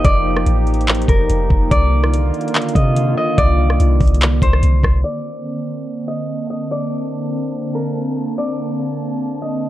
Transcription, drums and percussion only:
0.04 kick loud
0.04 closed hi-hat medium
0.37 cross-stick loud
0.47 closed hi-hat medium
0.67 closed hi-hat soft
0.74 closed hi-hat soft
0.81 closed hi-hat soft
0.88 clap loud
0.88 closed hi-hat soft
0.95 closed hi-hat medium
1.02 closed hi-hat medium
1.08 kick loud
1.08 closed hi-hat medium
1.30 closed hi-hat medium
1.50 kick medium
1.71 kick loud
1.71 closed hi-hat medium
2.03 cross-stick loud
2.13 closed hi-hat medium
2.34 closed hi-hat soft
2.41 closed hi-hat soft
2.48 closed hi-hat soft
2.55 clap loud
2.55 closed hi-hat medium
2.61 closed hi-hat medium
2.68 closed hi-hat medium
2.75 kick loud
2.75 closed hi-hat medium
2.96 closed hi-hat medium
3.38 kick loud
3.38 closed hi-hat medium
3.70 cross-stick medium
3.80 closed hi-hat medium
4.00 kick loud
4.00 closed hi-hat soft
4.00 open hi-hat soft
4.07 closed hi-hat soft
4.14 closed hi-hat medium
4.21 clap loud
4.21 closed hi-hat medium
4.42 kick loud
4.42 closed hi-hat medium
4.53 cross-stick medium
4.63 closed hi-hat medium
4.84 kick medium
4.84 cross-stick loud

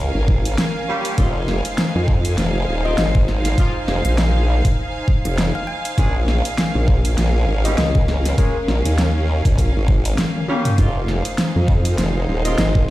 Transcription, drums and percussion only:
0.28 kick loud
0.45 closed hi-hat medium
0.58 snare loud
0.58 closed hi-hat medium
1.05 closed hi-hat medium
1.18 kick loud
1.18 closed hi-hat soft
1.48 snare soft
1.65 closed hi-hat medium
1.78 snare loud
1.78 closed hi-hat medium
2.08 kick loud
2.25 closed hi-hat medium
2.38 snare medium
2.38 closed hi-hat medium
2.98 snare loud
2.98 closed hi-hat soft
3.15 kick loud
3.28 snare soft
3.45 snare soft
3.45 closed hi-hat medium
3.58 kick loud
3.58 closed hi-hat soft
3.88 snare soft
4.05 closed hi-hat medium
4.18 snare loud
4.18 closed hi-hat medium
4.65 kick loud
4.65 closed hi-hat medium
5.08 kick loud
5.25 closed hi-hat medium
5.38 snare loud
5.38 closed hi-hat soft
5.85 closed hi-hat medium
5.98 kick loud
5.98 closed hi-hat medium
6.28 snare soft
6.45 closed hi-hat medium
6.58 snare loud
6.58 closed hi-hat medium
6.88 kick loud
7.05 closed hi-hat medium
7.18 snare medium
7.18 closed hi-hat medium
7.65 closed hi-hat medium
7.78 snare loud
7.78 closed hi-hat medium
7.95 kick loud
8.08 snare soft
8.25 snare soft
8.25 closed hi-hat medium
8.38 kick loud
8.38 closed hi-hat medium
8.68 snare soft
8.85 closed hi-hat medium
8.98 snare loud
8.98 closed hi-hat medium
9.45 kick loud
9.45 closed hi-hat medium
9.58 kick medium
9.58 closed hi-hat medium
9.88 kick loud
10.05 closed hi-hat medium
10.18 snare loud
10.18 closed hi-hat medium
10.35 high tom medium
10.48 mid tom medium
10.65 closed hi-hat medium
10.65 mid tom medium
10.78 kick loud
10.78 closed hi-hat medium
11.08 snare soft
11.25 closed hi-hat medium
11.38 snare loud
11.38 closed hi-hat medium
11.68 kick loud
11.85 closed hi-hat medium
11.98 snare medium
11.98 closed hi-hat medium
12.45 closed hi-hat medium
12.58 snare loud
12.58 closed hi-hat medium
12.75 kick loud

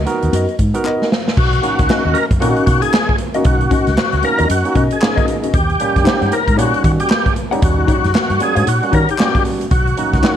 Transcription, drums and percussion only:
0.06 closed hi-hat medium
0.22 closed hi-hat soft
0.33 closed hi-hat medium
0.48 closed hi-hat soft
0.59 kick medium
0.59 closed hi-hat medium
0.74 closed hi-hat medium
0.85 clap medium
1.02 snare medium
1.12 snare medium
1.28 snare medium
1.37 kick loud
1.37 crash loud
1.53 closed hi-hat soft
1.63 closed hi-hat medium
1.79 kick medium
1.79 snare soft
1.79 closed hi-hat medium
1.90 snare loud
1.90 clap medium
2.15 closed hi-hat medium
2.31 kick loud
2.31 closed hi-hat medium
2.42 closed hi-hat medium
2.56 closed hi-hat soft
2.67 kick medium
2.67 closed hi-hat medium
2.82 closed hi-hat medium
2.94 snare loud
2.94 clap medium
3.09 kick medium
3.18 closed hi-hat medium
3.34 closed hi-hat medium
3.44 kick loud
3.44 closed hi-hat medium
3.61 closed hi-hat soft
3.71 kick medium
3.71 closed hi-hat medium
3.87 snare soft
3.87 closed hi-hat soft
3.98 snare loud
3.98 clap medium
4.12 closed hi-hat soft
4.23 closed hi-hat medium
4.38 closed hi-hat medium
4.50 closed hi-hat loud
4.65 closed hi-hat soft
4.75 kick medium
4.75 closed hi-hat medium
4.91 closed hi-hat medium
5.02 snare loud
5.02 clap loud
5.18 kick medium
5.18 closed hi-hat soft
5.28 closed hi-hat medium
5.43 closed hi-hat medium
5.54 kick loud
5.54 closed hi-hat medium
5.70 closed hi-hat soft
5.80 closed hi-hat medium
5.96 kick medium
5.96 snare soft
5.96 closed hi-hat soft
6.06 snare loud
6.06 clap medium
6.22 closed hi-hat soft
6.32 closed hi-hat medium
6.48 kick medium
6.48 closed hi-hat medium
6.59 closed hi-hat medium
6.74 closed hi-hat soft
6.84 kick medium
6.84 closed hi-hat medium
7.00 closed hi-hat medium
7.10 snare loud
7.10 clap loud
7.26 kick medium
7.26 closed hi-hat soft
7.36 closed hi-hat medium
7.52 closed hi-hat medium
7.62 kick loud
7.62 closed hi-hat medium
7.88 kick loud
7.88 closed hi-hat medium
8.04 snare soft
8.04 closed hi-hat soft
8.15 snare loud
8.15 clap medium
8.30 closed hi-hat soft
8.40 closed hi-hat medium
8.56 closed hi-hat medium
8.67 closed hi-hat loud
8.83 closed hi-hat soft
8.93 kick medium
8.93 closed hi-hat medium
9.09 closed hi-hat medium
9.19 snare loud
9.19 clap loud
9.35 kick medium
9.35 closed hi-hat soft
9.45 open hi-hat medium
9.61 closed hi-hat medium
9.71 kick loud
9.71 closed hi-hat medium
9.87 closed hi-hat soft
9.97 closed hi-hat medium
10.13 kick medium
10.13 snare soft
10.13 closed hi-hat soft
10.24 snare loud
10.24 clap medium

